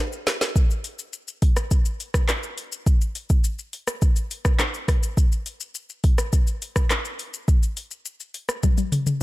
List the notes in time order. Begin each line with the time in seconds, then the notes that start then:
0.12 shaker, maracas
0.27 snare, closed hi-hat, shaker, maracas
0.41 snare, shaker, maracas
0.56 kick, shaker, maracas
0.70 shaker, maracas
0.84 closed hi-hat, shaker, maracas
0.99 maracas, shaker
1.13 maracas, shaker
1.28 shaker, maracas
1.42 kick, closed hi-hat, shaker
1.56 cross-stick, shaker, maracas
1.71 kick, shaker, maracas
1.85 maracas, shaker
2.00 closed hi-hat, shaker, maracas
2.14 kick, cross-stick, shaker, maracas
2.28 cross-stick, clap, maracas, shaker
2.43 shaker, maracas
2.58 closed hi-hat, shaker, maracas
2.72 maracas, shaker
2.86 kick, shaker, maracas
3.01 maracas, shaker
3.15 closed hi-hat, shaker, maracas
3.29 kick, maracas, shaker
3.44 maracas, shaker
3.59 shaker, maracas
3.73 closed hi-hat, shaker
3.87 cross-stick, maracas, shaker
4.02 kick, shaker, maracas
4.16 maracas, shaker
4.31 closed hi-hat, maracas, shaker
4.45 kick, cross-stick, maracas, shaker
4.59 cross-stick, clap, high timbale, maracas, shaker
4.74 shaker, maracas
4.88 kick, cross-stick, closed hi-hat, maracas, shaker
5.03 shaker, maracas
5.17 kick, shaker, maracas
5.32 shaker, maracas
5.46 closed hi-hat, shaker, maracas
5.60 shaker, maracas
5.75 maracas, shaker
5.89 shaker, maracas
6.04 kick, closed hi-hat, shaker
6.18 cross-stick, shaker, maracas
6.32 kick, shaker, maracas
6.47 maracas, shaker
6.62 closed hi-hat, maracas, shaker
6.76 kick, cross-stick, shaker, maracas
6.90 cross-stick, clap, maracas, shaker
7.05 shaker, maracas
7.19 closed hi-hat, maracas, shaker
7.34 maracas, shaker
7.48 kick, shaker, maracas
7.63 maracas, shaker
7.77 closed hi-hat, maracas, shaker
7.91 maracas, shaker
8.05 maracas, shaker
8.20 shaker, maracas
8.34 closed hi-hat, shaker
8.49 cross-stick, shaker, maracas
8.63 kick, high tom, shaker, maracas
8.77 high tom, maracas, shaker
8.92 closed hi-hat, mid tom, maracas, shaker
9.06 mid tom, maracas, shaker